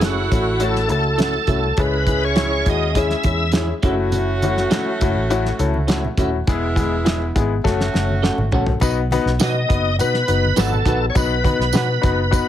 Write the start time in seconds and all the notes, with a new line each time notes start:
Already playing: F#1 E4 F#4 A4
0.01 A3 C#4 E4 F#4 G#4 A4 E5, snare, closed hi-hat
0.31 A1 A3 C#4 E4 F#4, kick, closed hi-hat
0.60 A3 C#4 E4 F#4 A4, closed hi-hat
0.76 snare
0.88 C#2 A3 C#4 E4 F#4 A4, closed hi-hat
1.17 A3 C#4 E4 F#4 A4 E5, snare, closed hi-hat
1.47 C2 A3 C#4 E4 F#4 A4 E5, kick, closed hi-hat
1.77 C#2 G#3 C#4 E4 G#4 B4, kick, closed hi-hat
2.07 G#3 C#4 E4 G#4, kick, closed hi-hat
2.25 C#5
2.36 G#3 C#4 E4 G#4 C#5 E5, snare, closed hi-hat
2.66 D#2 G#3 C#4 E4 F#4 D#5, kick, closed hi-hat
2.95 G#3 C#4 E4 G#4 E5, kick, closed hi-hat
3.10 snare
3.23 E2 G#3 C#4 E4 G#4, kick, closed hi-hat
3.52 E4 G#4 C#5 E5, snare, closed hi-hat
3.56 G#3 C#4 E4 G#4
3.82 F#1 G#3 A3 C#4 E4 F#4 A4 E5, kick, closed hi-hat
3.91 A3
4.12 closed hi-hat, muted conga, low conga
4.42 A3 C#4 E4 F#4, closed hi-hat, muted conga, high conga
4.57 snare
4.71 A3 C#4 E4 F#4 A4 E5, snare, closed hi-hat, muted conga
5.01 F#1 A3 C#4 E4 F#4, kick, closed hi-hat
5.15 A1
5.30 A3 C#4 E4 F#4, closed hi-hat
5.46 snare
5.59 C#2 A3 C#4 E4 A4, closed hi-hat, muted conga
5.74 high conga
5.88 A3 C#4 E4 F#4 A4 E5, snare, closed hi-hat, muted conga
6.04 low conga
6.17 D#1 A3 C#4 E4 F#4 A4 E5, kick, closed hi-hat, high conga, low conga
6.47 E1 G#3 B3 E4 G#4, kick, closed hi-hat, muted conga, low conga
6.76 G#3 B3 E4 G#4, kick, closed hi-hat, high conga
7.05 G#3 B3 E4 G#4 B4 E5, snare, closed hi-hat, muted conga
7.35 G#1 G#3 B3 E4 G#4, kick, closed hi-hat, muted conga
7.64 F#1 A3 C#4 F#4 A4, kick, snare
7.81 snare
7.93 F#1 A3 C#4 F#4 A4, snare, muted conga
8.09 high conga
8.22 A3 C#4 F#4 A4 C#5 F#5, snare, muted conga
8.38 G#1, high conga, low conga
8.52 A#1 A3 C#4 F#4 A4 C#5 F#5, floor tom, high conga, low conga
8.67 floor tom
8.80 B1 B3 D#4 F#4 B4, kick, closed hi-hat, tambourine, muted conga, low conga
9.11 B3 D#4 F#4 B4, closed hi-hat, high conga
9.25 B1, snare
9.40 B3 D#4 F#4 B4 D#5 F#5, snare, closed hi-hat, tambourine
9.68 F#1 B3 D#4 F#4 B4, kick, closed hi-hat
9.98 B2 B3 D#4 F#4 B4, closed hi-hat, tambourine, muted conga
10.14 snare
10.27 F#1 B3 D#4 F#4 B4, closed hi-hat
10.44 high conga
10.56 G#1 B3 D#4 F#4 A4 B4 F#5, snare, closed hi-hat, tambourine, muted conga
10.73 low conga
10.85 A#1 B3 D#4 F#4 B4 F#5, kick, closed hi-hat, high conga, low conga
11.10 C#5
11.15 B1 B3 D#4 F#4 B4, kick, closed hi-hat, tambourine, low conga
11.44 B3 D#4 F#4 B4, kick, closed hi-hat, muted conga, high conga
11.59 B1, snare
11.73 B2 B3 D#4 F#4 B4 F#5, snare, closed hi-hat, tambourine
12.01 F#1 B3 D#4 F#4 B4, kick, closed hi-hat
12.31 B3 D#4 F#4 B4, kick, closed hi-hat, tambourine